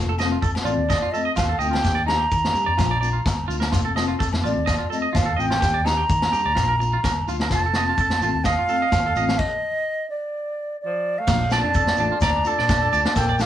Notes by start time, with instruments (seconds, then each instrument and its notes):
Already playing: fingered electric bass F1, steel-string acoustic guitar D#3 A3 C4 F4
0.09 clean electric guitar A4
0.19 steel-string acoustic guitar A3 C4 F4, clean electric guitar D#5, snare, low agogo, shekere
0.32 clean electric guitar F4
0.42 fingered electric bass F2, clean electric guitar A4, kick, shekere
0.55 snare, low agogo
0.64 fingered electric bass A1, steel-string acoustic guitar A3 C4 F4, clean electric guitar F4, flute D5, shekere
0.77 fingered electric bass D#2
0.90 clean electric guitar D#5, kick, snare, low agogo, shekere
1.02 clean electric guitar F4
1.12 steel-string acoustic guitar A3 C4 F4, clean electric guitar A4, flute D#5, shekere
1.25 clean electric guitar D#5
1.36 fingered electric bass D#2, clean electric guitar F4, flute F5, kick, snare, low agogo, shekere
1.49 clean electric guitar A4
1.59 fingered electric bass D2, steel-string acoustic guitar A3 C4 F4, clean electric guitar D#5, flute G5, shekere
1.71 clean electric guitar F4, snare, low agogo
1.83 fingered electric bass D#2, steel-string acoustic guitar D#3 A#3 D4 G4, clean electric guitar G4, kick, snare, shekere
1.95 clean electric guitar D5
2.06 steel-string acoustic guitar A#3 D4 G4, clean electric guitar D#4, flute A#5, snare, low agogo
2.18 clean electric guitar G4
2.31 fingered electric bass D#3, kick, shekere
2.45 snare, low agogo
2.54 fingered electric bass G2, steel-string acoustic guitar A#3 D4 G4, muted clean electric guitar stroke, shekere
2.66 fingered electric bass F2, clean electric guitar D5
2.77 fingered electric bass A#1, steel-string acoustic guitar F3 A#3 D4 F4, clean electric guitar F4, kick, snare, low agogo, shekere
2.91 clean electric guitar D5
3.01 steel-string acoustic guitar A#3 D4 F4, clean electric guitar D5, shekere
3.13 clean electric guitar F4
3.26 fingered electric bass G1, kick, snare, low agogo, shekere
3.48 fingered electric bass D2, steel-string acoustic guitar A#3 D4 F4, clean electric guitar F4, shekere
3.60 clean electric guitar A#4, snare, low agogo
3.72 fingered electric bass F1, steel-string acoustic guitar D#3 A3 C4 F4, clean electric guitar F4, kick, snare, shekere
3.85 clean electric guitar A4
3.95 steel-string acoustic guitar A3 C4 F4, clean electric guitar D#5, snare, low agogo, shekere
4.08 clean electric guitar F4
4.19 fingered electric bass F2, clean electric guitar A4, kick, snare, shekere
4.33 snare, low agogo
4.43 fingered electric bass A1, steel-string acoustic guitar A3 C4 F4, clean electric guitar F4, flute D5, shekere
4.56 fingered electric bass D#2
4.66 clean electric guitar D#5, kick, snare, low agogo, shekere
4.78 clean electric guitar F4
4.90 steel-string acoustic guitar A3 C4 F4, clean electric guitar A4, flute D#5, shekere
5.02 clean electric guitar D#5
5.13 fingered electric bass D#2, clean electric guitar F4, flute F5, kick, snare, low agogo, shekere
5.26 clean electric guitar A4
5.37 fingered electric bass A1, steel-string acoustic guitar A3 C4 F4, clean electric guitar D#5, flute G5, shekere
5.50 clean electric guitar F4, snare, low agogo
5.60 fingered electric bass D#2, steel-string acoustic guitar D#3 A#3 G4, clean electric guitar G4, muted steel-string acoustic guitar stroke, kick, snare, shekere
5.74 clean electric guitar D5
5.85 steel-string acoustic guitar A#3 D4 G4, clean electric guitar D#4, flute A#5, snare, low agogo, shekere
5.97 clean electric guitar G4
6.09 fingered electric bass D#3, kick, shekere
6.22 snare, low agogo
6.33 fingered electric bass G2, steel-string acoustic guitar A#3 D4 G4, clean electric guitar G4, shekere
6.46 fingered electric bass D2, clean electric guitar D5
6.55 fingered electric bass A#1, steel-string acoustic guitar F3 A#3 D4 F4, clean electric guitar F4, kick, snare, low agogo, shekere
6.68 clean electric guitar A#4
6.79 steel-string acoustic guitar A#3 D4 F4, muted clean electric guitar stroke, shekere
6.93 clean electric guitar F4
7.04 fingered electric bass G1, clean electric guitar A#4, kick, snare, low agogo, shekere
7.27 fingered electric bass D2, steel-string acoustic guitar D4 F4, clean electric guitar F4, muted steel-string acoustic guitar stroke, shekere
7.40 clean electric guitar A#4, snare, low agogo
7.49 fingered electric bass F1, steel-string acoustic guitar D#3 A3 C4 F4, clean electric guitar F4, kick, snare, shekere
7.54 flute A5
7.66 clean electric guitar A4
7.73 steel-string acoustic guitar A3 C4 F4, clean electric guitar D#5, snare, low agogo, shekere
7.89 clean electric guitar F4
7.97 fingered electric bass F2, clean electric guitar A4, kick, shekere
8.10 snare, low agogo
8.21 fingered electric bass A1, steel-string acoustic guitar A3 C4 F4, clean electric guitar F4, shekere
8.34 fingered electric bass D#2
8.44 clean electric guitar D#5, flute F5, kick, snare, low agogo, shekere
8.59 clean electric guitar F4
8.67 steel-string acoustic guitar A3 C4 F4, clean electric guitar A4, shekere
8.82 clean electric guitar D#5
8.92 fingered electric bass D#2, clean electric guitar F4, kick, snare, low agogo, shekere
9.06 clean electric guitar A4
9.15 fingered electric bass A1, steel-string acoustic guitar A3 C4 F4, clean electric guitar D#5, shekere
9.29 clean electric guitar F4, snare, low agogo
9.39 flute D#5, kick, crash
10.10 flute D5
10.82 tenor saxophone F3, flute D5
11.18 tenor saxophone A3, flute F5
11.27 fingered electric bass A#1, steel-string acoustic guitar F3 A3 D4 F4, clean electric guitar A#3, kick, snare, crash, shekere
11.40 shekere
11.50 steel-string acoustic guitar A3 D4 F4, clean electric guitar D5, flute A5, snare, low agogo, shekere
11.55 tenor saxophone D4
11.63 fingered electric bass F2, clean electric guitar D4
11.74 clean electric guitar A4, kick, shekere
11.87 snare, low agogo, shekere
11.97 fingered electric bass A1, steel-string acoustic guitar A3 D4 F4, clean electric guitar D4, shekere
12.12 clean electric guitar F4
12.21 fingered electric bass D2, clean electric guitar D5, flute A#5, kick, snare, low agogo, shekere
12.25 tenor saxophone D4
12.36 clean electric guitar D4
12.44 steel-string acoustic guitar A3 D4 F4, tenor saxophone D4, clean electric guitar A4, flute A5, shekere
12.59 fingered electric bass A#2, clean electric guitar D5, snare
12.69 clean electric guitar D4, kick, snare, low agogo, shekere
12.81 clean electric guitar A4, shekere
12.92 fingered electric bass D2, steel-string acoustic guitar A3 D4 F4, clean electric guitar D5, shekere
13.05 clean electric guitar D4, snare, low agogo
13.16 fingered electric bass A#1, tenor saxophone A#3, clean electric guitar A4, flute G5, kick, snare, shekere
13.28 clean electric guitar D5, shekere
13.39 tenor saxophone A3, steel-string acoustic guitar A3 D4 F4, clean electric guitar D4, flute F5, snare, low agogo, shekere